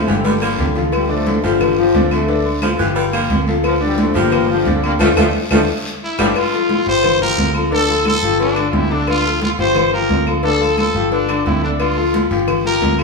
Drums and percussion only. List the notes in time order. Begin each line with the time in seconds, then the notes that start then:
0.08 high conga, short guiro
0.25 cowbell, high conga, low agogo, long guiro
0.41 cowbell, low agogo, claves
0.58 cowbell, low conga, low timbale, low agogo, short guiro
0.75 low conga, short guiro
0.92 cowbell, high conga, low agogo, long guiro, claves
1.10 high conga
1.27 cowbell, high conga, low timbale, low agogo, short guiro
1.44 cowbell, high conga, low agogo, short guiro
1.61 cowbell, high conga, low conga, low agogo, long guiro, claves
1.78 high conga
1.94 cowbell, high conga, low timbale, low agogo, short guiro
2.11 high conga, low agogo, short guiro, claves
2.28 cowbell, high conga, long guiro
2.45 high conga, low agogo
2.62 cowbell, high conga, low timbale, low agogo, short guiro, claves
2.79 high conga, short guiro
2.96 cowbell, high conga, low agogo, long guiro
3.13 cowbell, high conga, low agogo, claves
3.30 cowbell, high conga, low timbale, low agogo, short guiro
3.47 high conga, short guiro
3.64 cowbell, high conga, low agogo, long guiro, claves
3.81 high conga
3.98 cowbell, high conga, low timbale, low agogo, short guiro
4.15 cowbell, high conga, low agogo, short guiro
4.32 cowbell, high conga, low conga, low agogo, long guiro, claves
4.49 high conga
4.66 cowbell, high conga, low timbale, low agogo, short guiro
4.83 high conga, low agogo, short guiro, claves
4.99 cowbell, high conga, high timbale, long guiro, claves
5.17 cowbell, high conga, high timbale, long guiro, claves
5.51 cowbell, high conga, high timbale, long guiro, claves
6.19 cowbell, high conga, high timbale, long guiro, claves
6.36 cowbell, high conga, low agogo, claves
6.53 high conga
6.69 cowbell, high conga, low timbale, low agogo
6.86 cowbell, high conga, low agogo
7.03 cowbell, high conga, low conga, low agogo, claves
7.21 high conga, low conga
7.38 cowbell, high conga, low timbale, low agogo
7.55 high conga, low agogo, claves
7.72 cowbell, high conga
7.89 high conga, low agogo
8.05 cowbell, high conga, low timbale, low agogo, claves
8.22 high conga
8.39 cowbell, high conga, low agogo
8.56 cowbell, high conga, low agogo, claves
8.73 cowbell, high conga, low timbale, low agogo
8.90 high conga
9.07 cowbell, high conga, low agogo, claves
9.25 high conga
9.41 cowbell, high conga, low timbale, low agogo
9.59 cowbell, high conga, low agogo
9.75 cowbell, high conga, low conga, low agogo, claves
9.93 high conga
10.09 cowbell, high conga, low timbale, low agogo
10.26 high conga, low agogo, claves
10.43 cowbell, high conga
10.60 high conga, low agogo
10.77 cowbell, high conga, low timbale, low agogo, claves
10.95 high conga
11.12 cowbell, high conga, low agogo
11.29 cowbell, high conga, low agogo, claves
11.46 cowbell, high conga, low timbale, low agogo
11.63 high conga
11.80 cowbell, high conga, low agogo, long guiro, claves
11.97 high conga
12.14 cowbell, high conga, low timbale, low agogo, short guiro
12.31 cowbell, high conga, low agogo, short guiro
12.47 cowbell, high conga, low conga, low agogo, long guiro, claves
12.65 high conga
12.82 cowbell, high conga, low timbale, low agogo, short guiro
12.98 high conga, low agogo, short guiro, claves